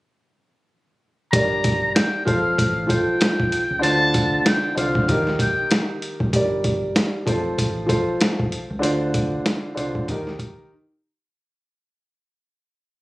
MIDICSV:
0, 0, Header, 1, 5, 480
1, 0, Start_track
1, 0, Key_signature, -2, "minor"
1, 0, Tempo, 625000
1, 1022, Time_signature, 4, 2, 24, 8
1, 9994, End_track
2, 0, Start_track
2, 0, Title_t, "Muted trumpet"
2, 0, Program_c, 0, 59
2, 1015, Note_on_c, 0, 82, 93
2, 1469, Note_off_c, 0, 82, 0
2, 1499, Note_on_c, 0, 79, 84
2, 1716, Note_off_c, 0, 79, 0
2, 1734, Note_on_c, 0, 77, 76
2, 2189, Note_off_c, 0, 77, 0
2, 2234, Note_on_c, 0, 79, 81
2, 2917, Note_off_c, 0, 79, 0
2, 2940, Note_on_c, 0, 81, 120
2, 3392, Note_off_c, 0, 81, 0
2, 3435, Note_on_c, 0, 79, 86
2, 3645, Note_off_c, 0, 79, 0
2, 3668, Note_on_c, 0, 77, 74
2, 4116, Note_off_c, 0, 77, 0
2, 4159, Note_on_c, 0, 79, 87
2, 4510, Note_off_c, 0, 79, 0
2, 9994, End_track
3, 0, Start_track
3, 0, Title_t, "Grand piano"
3, 0, Program_c, 1, 0
3, 1021, Note_on_c, 1, 55, 89
3, 1028, Note_on_c, 1, 67, 80
3, 1034, Note_on_c, 1, 70, 80
3, 1042, Note_on_c, 1, 74, 104
3, 1732, Note_on_c, 1, 53, 94
3, 1740, Note_on_c, 1, 65, 82
3, 1741, Note_off_c, 1, 55, 0
3, 1745, Note_off_c, 1, 67, 0
3, 1746, Note_on_c, 1, 69, 87
3, 1748, Note_off_c, 1, 70, 0
3, 1752, Note_off_c, 1, 74, 0
3, 1753, Note_on_c, 1, 72, 97
3, 2186, Note_off_c, 1, 53, 0
3, 2189, Note_off_c, 1, 65, 0
3, 2193, Note_off_c, 1, 69, 0
3, 2196, Note_off_c, 1, 72, 0
3, 2202, Note_on_c, 1, 53, 93
3, 2208, Note_on_c, 1, 65, 83
3, 2215, Note_on_c, 1, 69, 80
3, 2222, Note_on_c, 1, 72, 95
3, 2777, Note_off_c, 1, 53, 0
3, 2780, Note_off_c, 1, 65, 0
3, 2784, Note_off_c, 1, 69, 0
3, 2787, Note_off_c, 1, 72, 0
3, 2913, Note_on_c, 1, 50, 96
3, 2920, Note_on_c, 1, 62, 84
3, 2927, Note_on_c, 1, 65, 84
3, 2934, Note_on_c, 1, 72, 106
3, 3600, Note_off_c, 1, 50, 0
3, 3604, Note_off_c, 1, 62, 0
3, 3607, Note_off_c, 1, 65, 0
3, 3611, Note_off_c, 1, 72, 0
3, 3646, Note_on_c, 1, 50, 87
3, 3654, Note_on_c, 1, 62, 86
3, 3661, Note_on_c, 1, 65, 85
3, 3667, Note_on_c, 1, 72, 103
3, 3878, Note_off_c, 1, 50, 0
3, 3882, Note_off_c, 1, 62, 0
3, 3886, Note_off_c, 1, 65, 0
3, 3889, Note_off_c, 1, 72, 0
3, 3906, Note_on_c, 1, 51, 99
3, 3913, Note_on_c, 1, 63, 91
3, 3919, Note_on_c, 1, 67, 98
3, 3926, Note_on_c, 1, 70, 110
3, 4801, Note_off_c, 1, 51, 0
3, 4804, Note_off_c, 1, 63, 0
3, 4808, Note_off_c, 1, 67, 0
3, 4811, Note_off_c, 1, 70, 0
3, 4861, Note_on_c, 1, 55, 91
3, 4868, Note_on_c, 1, 67, 84
3, 4875, Note_on_c, 1, 70, 83
3, 4882, Note_on_c, 1, 74, 100
3, 5573, Note_on_c, 1, 53, 97
3, 5580, Note_on_c, 1, 65, 87
3, 5581, Note_off_c, 1, 55, 0
3, 5585, Note_off_c, 1, 67, 0
3, 5587, Note_on_c, 1, 69, 86
3, 5588, Note_off_c, 1, 70, 0
3, 5592, Note_off_c, 1, 74, 0
3, 5594, Note_on_c, 1, 72, 100
3, 6026, Note_off_c, 1, 53, 0
3, 6030, Note_off_c, 1, 65, 0
3, 6033, Note_off_c, 1, 69, 0
3, 6037, Note_off_c, 1, 72, 0
3, 6040, Note_on_c, 1, 53, 96
3, 6048, Note_on_c, 1, 65, 86
3, 6055, Note_on_c, 1, 69, 80
3, 6061, Note_on_c, 1, 72, 97
3, 6616, Note_off_c, 1, 53, 0
3, 6620, Note_off_c, 1, 65, 0
3, 6623, Note_off_c, 1, 69, 0
3, 6626, Note_off_c, 1, 72, 0
3, 6751, Note_on_c, 1, 50, 94
3, 6758, Note_on_c, 1, 62, 84
3, 6765, Note_on_c, 1, 65, 87
3, 6772, Note_on_c, 1, 72, 109
3, 7439, Note_off_c, 1, 50, 0
3, 7443, Note_off_c, 1, 62, 0
3, 7446, Note_off_c, 1, 65, 0
3, 7450, Note_off_c, 1, 72, 0
3, 7485, Note_on_c, 1, 50, 90
3, 7492, Note_on_c, 1, 62, 87
3, 7499, Note_on_c, 1, 65, 84
3, 7506, Note_on_c, 1, 72, 101
3, 7718, Note_off_c, 1, 50, 0
3, 7721, Note_off_c, 1, 62, 0
3, 7725, Note_off_c, 1, 65, 0
3, 7728, Note_off_c, 1, 72, 0
3, 7747, Note_on_c, 1, 51, 99
3, 7754, Note_on_c, 1, 63, 90
3, 7761, Note_on_c, 1, 67, 95
3, 7768, Note_on_c, 1, 70, 108
3, 8224, Note_off_c, 1, 51, 0
3, 8228, Note_off_c, 1, 63, 0
3, 8231, Note_off_c, 1, 67, 0
3, 8235, Note_off_c, 1, 70, 0
3, 9994, End_track
4, 0, Start_track
4, 0, Title_t, "Fingered electric bass"
4, 0, Program_c, 2, 33
4, 1023, Note_on_c, 2, 31, 103
4, 1441, Note_off_c, 2, 31, 0
4, 1743, Note_on_c, 2, 29, 98
4, 1952, Note_off_c, 2, 29, 0
4, 1986, Note_on_c, 2, 33, 95
4, 2194, Note_off_c, 2, 33, 0
4, 2845, Note_on_c, 2, 37, 92
4, 2930, Note_off_c, 2, 37, 0
4, 2944, Note_on_c, 2, 38, 108
4, 3362, Note_off_c, 2, 38, 0
4, 3662, Note_on_c, 2, 36, 93
4, 3871, Note_off_c, 2, 36, 0
4, 3905, Note_on_c, 2, 39, 103
4, 4113, Note_off_c, 2, 39, 0
4, 4764, Note_on_c, 2, 30, 90
4, 4850, Note_off_c, 2, 30, 0
4, 4863, Note_on_c, 2, 31, 106
4, 5281, Note_off_c, 2, 31, 0
4, 5581, Note_on_c, 2, 29, 100
4, 5791, Note_off_c, 2, 29, 0
4, 5824, Note_on_c, 2, 33, 95
4, 6033, Note_off_c, 2, 33, 0
4, 6684, Note_on_c, 2, 37, 93
4, 6770, Note_off_c, 2, 37, 0
4, 6782, Note_on_c, 2, 38, 106
4, 7201, Note_off_c, 2, 38, 0
4, 7502, Note_on_c, 2, 36, 88
4, 7712, Note_off_c, 2, 36, 0
4, 7744, Note_on_c, 2, 39, 102
4, 7953, Note_off_c, 2, 39, 0
4, 9994, End_track
5, 0, Start_track
5, 0, Title_t, "Drums"
5, 1022, Note_on_c, 9, 36, 110
5, 1023, Note_on_c, 9, 42, 92
5, 1099, Note_off_c, 9, 36, 0
5, 1100, Note_off_c, 9, 42, 0
5, 1260, Note_on_c, 9, 42, 77
5, 1263, Note_on_c, 9, 36, 93
5, 1337, Note_off_c, 9, 42, 0
5, 1340, Note_off_c, 9, 36, 0
5, 1505, Note_on_c, 9, 38, 121
5, 1508, Note_on_c, 9, 42, 89
5, 1582, Note_off_c, 9, 38, 0
5, 1585, Note_off_c, 9, 42, 0
5, 1742, Note_on_c, 9, 36, 87
5, 1748, Note_on_c, 9, 42, 72
5, 1818, Note_off_c, 9, 36, 0
5, 1825, Note_off_c, 9, 42, 0
5, 1985, Note_on_c, 9, 36, 89
5, 1988, Note_on_c, 9, 42, 92
5, 2062, Note_off_c, 9, 36, 0
5, 2065, Note_off_c, 9, 42, 0
5, 2222, Note_on_c, 9, 36, 95
5, 2226, Note_on_c, 9, 42, 72
5, 2299, Note_off_c, 9, 36, 0
5, 2303, Note_off_c, 9, 42, 0
5, 2463, Note_on_c, 9, 42, 96
5, 2470, Note_on_c, 9, 38, 123
5, 2540, Note_off_c, 9, 42, 0
5, 2547, Note_off_c, 9, 38, 0
5, 2608, Note_on_c, 9, 36, 101
5, 2685, Note_off_c, 9, 36, 0
5, 2706, Note_on_c, 9, 42, 72
5, 2782, Note_off_c, 9, 42, 0
5, 2944, Note_on_c, 9, 42, 90
5, 3021, Note_off_c, 9, 42, 0
5, 3181, Note_on_c, 9, 42, 78
5, 3184, Note_on_c, 9, 36, 97
5, 3258, Note_off_c, 9, 42, 0
5, 3260, Note_off_c, 9, 36, 0
5, 3425, Note_on_c, 9, 38, 119
5, 3428, Note_on_c, 9, 42, 92
5, 3501, Note_off_c, 9, 38, 0
5, 3504, Note_off_c, 9, 42, 0
5, 3668, Note_on_c, 9, 42, 74
5, 3744, Note_off_c, 9, 42, 0
5, 3803, Note_on_c, 9, 36, 101
5, 3880, Note_off_c, 9, 36, 0
5, 3904, Note_on_c, 9, 36, 97
5, 3907, Note_on_c, 9, 42, 92
5, 3981, Note_off_c, 9, 36, 0
5, 3984, Note_off_c, 9, 42, 0
5, 4048, Note_on_c, 9, 38, 38
5, 4125, Note_off_c, 9, 38, 0
5, 4141, Note_on_c, 9, 36, 98
5, 4145, Note_on_c, 9, 42, 73
5, 4218, Note_off_c, 9, 36, 0
5, 4222, Note_off_c, 9, 42, 0
5, 4382, Note_on_c, 9, 42, 95
5, 4389, Note_on_c, 9, 38, 122
5, 4459, Note_off_c, 9, 42, 0
5, 4466, Note_off_c, 9, 38, 0
5, 4625, Note_on_c, 9, 42, 71
5, 4702, Note_off_c, 9, 42, 0
5, 4764, Note_on_c, 9, 36, 100
5, 4840, Note_off_c, 9, 36, 0
5, 4862, Note_on_c, 9, 36, 112
5, 4864, Note_on_c, 9, 42, 94
5, 4939, Note_off_c, 9, 36, 0
5, 4941, Note_off_c, 9, 42, 0
5, 5101, Note_on_c, 9, 42, 80
5, 5103, Note_on_c, 9, 36, 92
5, 5178, Note_off_c, 9, 42, 0
5, 5180, Note_off_c, 9, 36, 0
5, 5344, Note_on_c, 9, 38, 126
5, 5347, Note_on_c, 9, 42, 91
5, 5421, Note_off_c, 9, 38, 0
5, 5424, Note_off_c, 9, 42, 0
5, 5581, Note_on_c, 9, 36, 89
5, 5587, Note_on_c, 9, 42, 73
5, 5658, Note_off_c, 9, 36, 0
5, 5663, Note_off_c, 9, 42, 0
5, 5824, Note_on_c, 9, 36, 92
5, 5826, Note_on_c, 9, 42, 91
5, 5901, Note_off_c, 9, 36, 0
5, 5903, Note_off_c, 9, 42, 0
5, 6061, Note_on_c, 9, 36, 98
5, 6064, Note_on_c, 9, 42, 68
5, 6137, Note_off_c, 9, 36, 0
5, 6141, Note_off_c, 9, 42, 0
5, 6302, Note_on_c, 9, 42, 94
5, 6309, Note_on_c, 9, 38, 125
5, 6379, Note_off_c, 9, 42, 0
5, 6385, Note_off_c, 9, 38, 0
5, 6448, Note_on_c, 9, 36, 100
5, 6524, Note_off_c, 9, 36, 0
5, 6545, Note_on_c, 9, 42, 68
5, 6622, Note_off_c, 9, 42, 0
5, 6784, Note_on_c, 9, 42, 92
5, 6860, Note_off_c, 9, 42, 0
5, 7020, Note_on_c, 9, 42, 77
5, 7023, Note_on_c, 9, 36, 95
5, 7097, Note_off_c, 9, 42, 0
5, 7100, Note_off_c, 9, 36, 0
5, 7263, Note_on_c, 9, 38, 116
5, 7266, Note_on_c, 9, 42, 92
5, 7340, Note_off_c, 9, 38, 0
5, 7343, Note_off_c, 9, 42, 0
5, 7506, Note_on_c, 9, 42, 74
5, 7583, Note_off_c, 9, 42, 0
5, 7643, Note_on_c, 9, 36, 101
5, 7719, Note_off_c, 9, 36, 0
5, 7744, Note_on_c, 9, 36, 90
5, 7746, Note_on_c, 9, 42, 89
5, 7820, Note_off_c, 9, 36, 0
5, 7822, Note_off_c, 9, 42, 0
5, 7887, Note_on_c, 9, 38, 37
5, 7964, Note_off_c, 9, 38, 0
5, 7980, Note_on_c, 9, 36, 99
5, 7983, Note_on_c, 9, 42, 69
5, 8057, Note_off_c, 9, 36, 0
5, 8060, Note_off_c, 9, 42, 0
5, 9994, End_track
0, 0, End_of_file